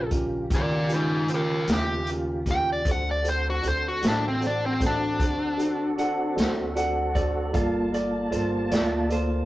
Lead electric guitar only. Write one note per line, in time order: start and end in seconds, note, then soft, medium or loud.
0.00 0.10 C#5 medium
0.54 0.92 A#4 medium
0.54 0.91 D5 medium
0.94 1.29 D#4 medium
0.94 1.30 C5 medium
1.34 1.68 G4 medium
1.34 1.70 A#4 medium
1.74 2.09 G4 medium
2.51 2.68 G5 medium
2.72 2.88 D5 medium
2.91 3.08 F#5 medium
3.11 3.27 D5 medium
3.29 3.46 C5 medium
3.50 3.66 F#4 medium
3.68 3.85 C5 medium
3.88 4.05 F#4 medium
4.08 4.25 D4 medium
4.28 4.47 C4 medium
4.47 4.63 D4 medium
4.66 4.83 C4 medium
4.86 6.36 D4 medium